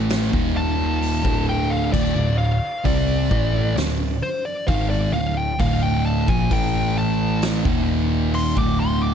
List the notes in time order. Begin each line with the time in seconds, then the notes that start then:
Already playing: A1 A2 E3 A3
0.10 snare, open hi-hat
0.33 D#1 D#2 A#2 D#3, kick
0.57 A5
1.02 open hi-hat
1.24 D1 D2 A2 D3, kick
1.49 G5
1.70 F5
1.92 D1 D2 A2 D5, kick, crash
2.16 D1 D2 A2
2.38 F5
2.84 C2 C3 G3 C4 D5, kick, open hi-hat
3.31 A1 A2 E3 A3, kick
3.76 D1 D2 A2, snare, open hi-hat
4.23 C5
4.45 D5
4.68 G#1 G#2 D#3 G#3 F5, kick, open hi-hat
4.90 D5
5.13 D1 D2 A2 F5
5.37 G5
5.59 D1 D2 A2 D3 F5, kick, open hi-hat
5.83 G5
6.06 A5
6.28 A#1 A#2 F3 G#5, kick
6.51 A1 A2 E3 A3 G5, kick, open hi-hat
6.98 A5
7.42 snare, open hi-hat
7.65 D#1 D#2 A#2 D#3, kick
8.34 C6, open hi-hat
8.56 D1 D2 A2 D3 D6, kick
8.80 C6
9.02 D6